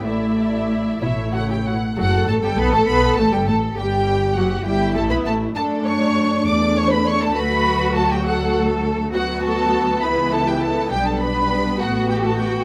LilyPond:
<<
  \new Staff \with { instrumentName = "Violin section" } { \time 6/8 \key d \major \tempo 4. = 67 e''4. e''8 fis''16 g''16 fis''8 | fis''8 a''16 g''16 b''16 a''16 b''8 a''16 g''16 a''8 | g''4 fis''8 g''8 a''16 b''16 a''8 | a''8 cis'''4 d'''8 cis'''16 b''16 cis'''16 a''16 |
b''4 a''16 g''16 fis''8 r4 | fis''8 a''4 b''8 a''16 g''16 a''8 | g''16 a''16 b''4 fis''8 g''16 a''16 g''8 | }
  \new Staff \with { instrumentName = "Violin section" } { \time 6/8 \key d \major << { <e' d''>4. <e' cis''>4 r8 | r2. | r2. | r2. |
r2. | r2. | r2. | } \\ { r4. e'8 fis'16 g'16 fis'8 | fis'8 a'16 g'16 b'16 a'16 b'8 a'16 g'16 a'8 | g'4 fis'8 g'8 a'16 b'16 a'8 | a'8 cis''4 d''8 cis''16 b'16 cis''16 a'16 |
b'4 a'16 g'16 fis'8 r4 | fis'8 a'4 b'8 a'16 g'16 a'8 | g'16 a'16 b'4 fis'8 g'16 a'16 g'8 | } >> }
  \new Staff \with { instrumentName = "Cello section" } { \time 6/8 \key d \major a,4. b,8 cis8 b,8 | a'2. | g'4. e'4. | d'2. |
fis'4. a'4. | fis'4. e'4. | d'4. fis'4. | }
  \new Staff \with { instrumentName = "Viola section" } { \time 6/8 \key d \major << { e'4. e'4 r8 | fis8 a16 g16 b16 a16 b8 a16 g16 a8 | g4 fis8 g8 a16 b16 a8 | d'4. a4.~ |
a4. a4. | b2. | b2. | } \\ { a4. a4 r8 | r2. | r2. | a2. |
fis2. | fis4. e4. | g4. a4. | } >> }
  \new Staff \with { instrumentName = "Double bass section" } { \clef bass \time 6/8 \key d \major a,,4. a,,4 r8 | fis,,8 a,,16 g,,16 b,,16 a,,16 b,,8 a,,16 g,,16 a,,8 | g,,4 fis,,8 g,,8 a,,16 b,,16 a,,8 | fis,4. e,4. |
d,2. | d,4. cis,4. | b,,4. a,,4. | }
>>